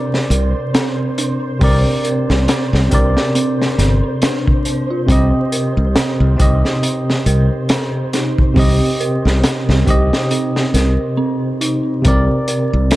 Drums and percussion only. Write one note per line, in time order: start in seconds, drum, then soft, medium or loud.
0.14 snare soft
0.31 closed hi-hat medium
0.75 snare loud
0.75 closed hi-hat medium
1.18 closed hi-hat medium
1.61 kick loud
1.61 open hi-hat medium
2.05 closed hi-hat medium
2.30 snare soft
2.48 snare loud
2.48 closed hi-hat medium
2.74 snare soft
2.91 kick medium
2.91 closed hi-hat medium
3.17 snare medium
3.35 closed hi-hat medium
3.62 snare soft
3.78 snare soft
3.78 closed hi-hat medium
4.22 snare loud
4.22 closed hi-hat medium
4.48 kick medium
4.65 closed hi-hat medium
5.08 kick loud
5.08 closed hi-hat medium
5.52 closed hi-hat medium
5.96 snare loud
5.96 closed hi-hat medium
6.40 kick medium
6.40 closed hi-hat medium
6.65 snare soft
6.83 closed hi-hat medium
7.10 snare soft
7.26 closed hi-hat medium
7.69 snare loud
7.69 closed hi-hat medium
8.13 snare soft
8.13 closed hi-hat medium
8.38 kick medium
8.56 kick loud
8.56 open hi-hat medium
9.01 closed hi-hat medium
9.27 snare soft
9.44 snare loud
9.44 closed hi-hat medium
9.70 snare soft
9.87 kick medium
9.87 closed hi-hat medium
10.13 snare medium
10.31 closed hi-hat medium
10.56 snare soft
10.74 snare soft
10.74 closed hi-hat medium
11.61 closed hi-hat medium
12.05 kick loud
12.05 closed hi-hat medium
12.48 closed hi-hat medium
12.91 snare loud
12.91 closed hi-hat medium